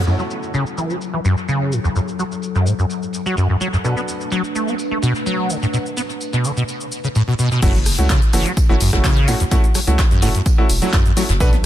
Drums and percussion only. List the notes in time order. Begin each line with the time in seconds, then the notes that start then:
0.07 tambourine, cabasa
0.19 cabasa
0.30 tambourine, cabasa
0.43 cabasa
0.54 tambourine, cabasa
0.66 closed hi-hat, cabasa
0.77 tambourine, cabasa
0.90 cabasa
1.01 tambourine, cabasa
1.25 tambourine, cabasa
1.37 snare, cabasa
1.49 tambourine, cabasa
1.72 tambourine, cabasa
1.85 cabasa
1.96 tambourine, cabasa
2.08 cabasa
2.19 tambourine, cabasa
2.31 closed hi-hat, cabasa
2.42 tambourine, cabasa
2.55 snare, cabasa
2.66 tambourine, cabasa
2.79 cabasa
2.90 tambourine, cabasa
3.03 cabasa
3.13 tambourine, cabasa
3.26 cabasa
3.37 tambourine, cabasa
3.60 tambourine, cabasa
3.73 snare, cabasa
3.84 tambourine, cabasa
3.97 cabasa
4.08 tambourine, cabasa
4.21 cabasa
4.30 tambourine, cabasa
4.44 closed hi-hat, cabasa
4.55 tambourine, cabasa
4.68 cabasa
4.78 tambourine, cabasa
5.02 tambourine, cabasa
5.15 snare, cabasa
5.26 tambourine, cabasa
5.50 tambourine, cabasa
5.63 cabasa
5.73 tambourine, cabasa
5.86 cabasa
5.97 tambourine, cabasa
6.09 closed hi-hat, cabasa
6.21 tambourine, cabasa
6.33 snare, cabasa
6.44 tambourine, cabasa
6.57 cabasa
6.68 tambourine, cabasa
6.81 cabasa
6.92 tambourine, cabasa
7.04 cabasa
7.15 tambourine, cabasa
7.39 tambourine, cabasa
7.51 snare, cabasa
7.62 kick, closed hi-hat, crash, tambourine, cabasa
7.75 closed hi-hat, cabasa
7.86 cross-stick, open hi-hat, tambourine, cabasa
7.99 closed hi-hat, cabasa
8.09 kick, snare, clap, closed hi-hat, tambourine, cabasa
8.21 closed hi-hat, cabasa
8.33 cross-stick, open hi-hat, tambourine, cabasa
8.46 closed hi-hat, cabasa
8.57 kick, closed hi-hat, tambourine, cabasa
8.80 open hi-hat, tambourine, cabasa
8.93 kick, cross-stick, snare, closed hi-hat, cabasa
9.04 kick, snare, clap, closed hi-hat, tambourine, cabasa
9.17 closed hi-hat
9.28 open hi-hat, tambourine, cabasa
9.40 closed hi-hat, cabasa
9.51 kick, closed hi-hat, tambourine, cabasa
9.64 closed hi-hat, cabasa
9.74 cross-stick, open hi-hat, tambourine, cabasa
9.87 closed hi-hat, cabasa
9.99 kick, snare, clap, closed hi-hat, tambourine, cabasa
10.11 snare, closed hi-hat, cabasa
10.22 open hi-hat, tambourine, cabasa
10.35 closed hi-hat, cabasa
10.46 kick, closed hi-hat, tambourine, cabasa
10.70 open hi-hat, tambourine, cabasa
10.82 closed hi-hat, cabasa
10.93 kick, snare, clap, closed hi-hat, tambourine, cabasa
11.06 closed hi-hat, cabasa
11.17 open hi-hat, tambourine, cabasa
11.29 snare, closed hi-hat, cabasa
11.40 kick, closed hi-hat, tambourine, cabasa
11.53 closed hi-hat, cabasa